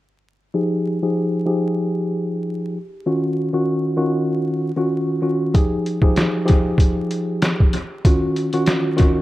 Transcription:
0.54 F3 D#4 G4 G#4
1.02 F3 D#4 G4 G#4
1.46 F3 D#4 G4 G#4
3.06 D#3 C#4 F4 F#4
3.53 D#3 C#4 F4 F#4
3.96 D#3 C#4 F4 F#4
4.76 D#3 C#4 F4 F#4
5.22 D#3 C#4 F4 F#4
5.54 F3 D#4 G4 G#4, kick, closed hi-hat
5.86 closed hi-hat
6.02 F3 D#4 G4 G#4, kick
6.16 snare, closed hi-hat
6.45 F3 D#4 G4 G#4, closed hi-hat
6.50 kick
6.78 kick, closed hi-hat
7.11 closed hi-hat
7.42 snare, closed hi-hat
7.60 kick
7.73 closed hi-hat
8.05 D#3 C#4 F4 F#4, kick, closed hi-hat
8.36 closed hi-hat
8.53 D#3 C#4 F4 F#4, closed hi-hat
8.66 snare, closed hi-hat
8.96 D#3 C#4 F4 F#4, kick, closed hi-hat

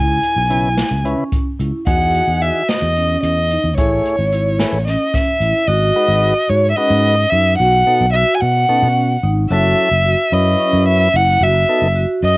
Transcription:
Already playing: C#2 E4 G#5
0.23 closed hi-hat
0.36 B1
0.50 C#3 C#4 E4 B4, closed hi-hat
0.77 snare, closed hi-hat
0.91 C#2
1.04 C#3 C#4 E4 B4, closed hi-hat
1.32 kick, closed hi-hat
1.59 C#2 E4, closed hi-hat
1.87 E2 E3 D#4 F#4 G#4 F#5, kick, closed hi-hat
2.14 closed hi-hat
2.28 E2
2.42 F#4 E5, closed hi-hat
2.69 D#5, snare, closed hi-hat
2.82 E2
2.96 C#4, closed hi-hat
3.22 E2 D#5, closed hi-hat
3.51 D#4, closed hi-hat
3.64 E2
3.77 A1 A3 E4 G#4 C#5, kick, closed hi-hat
4.05 closed hi-hat
4.19 G#1
4.32 E4, closed hi-hat
4.59 A3 E4 G#4 B4, snare, closed hi-hat
4.73 A1
4.87 C#4 D#5, snare, closed hi-hat
5.14 E5, kick, snare, closed hi-hat
5.40 A1 E4, closed hi-hat
5.67 G#1 F#4 D#5
5.96 G#3 D#4 F#4 B4
6.08 G#1
6.24 F#4
6.49 G#2 C#5
6.70 E5
6.76 G#3 C#4 D#4 F#4 B4 D#5
6.90 G#2
7.30 F#2 D#4 E5
7.57 B1 F#4 F#5
7.87 B2 B3 D#4 A4
8.01 B1
8.13 F#4 E5
8.35 G#5
8.40 B2 F#5
8.69 B2 B3 C#4 D#4 A4
8.83 B2
9.23 G#1 D#4
9.50 F#1 F#3 C#4 E4 F#4 A4 E5
9.91 F#1
10.05 F#4
10.32 F#2 F#3 C#4 E4 B4 D#5
10.60 C#4
10.73 F#2
10.88 E5
11.14 F#1 E4 F#5
11.41 F#1 F#4 E5
11.69 B3 D#4 A4
11.82 F#1
11.96 F#4
12.23 F#2 D#5

